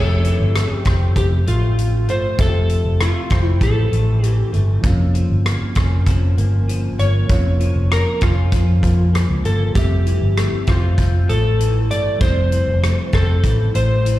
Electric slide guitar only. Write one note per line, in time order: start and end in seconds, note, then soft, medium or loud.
0.00 0.75 A4 loud
0.75 1.13 G4 loud
1.18 1.26 G4 medium
1.48 2.11 F4 medium
2.10 2.41 C5 medium
2.40 3.03 A4 medium
3.02 3.43 F4 medium
3.43 3.58 E4 medium
3.63 4.25 A4 medium
4.25 4.51 G4 medium
6.99 7.94 C#5 medium
7.92 8.20 A#4 medium
8.23 9.11 F4 medium
9.45 9.75 A4 medium
9.76 10.70 G4 medium
10.69 11.31 F4 medium
11.29 11.92 A4 medium
11.91 12.19 D5 medium
12.22 13.09 C5 loud
13.14 13.77 A4 medium
13.75 14.19 C5 medium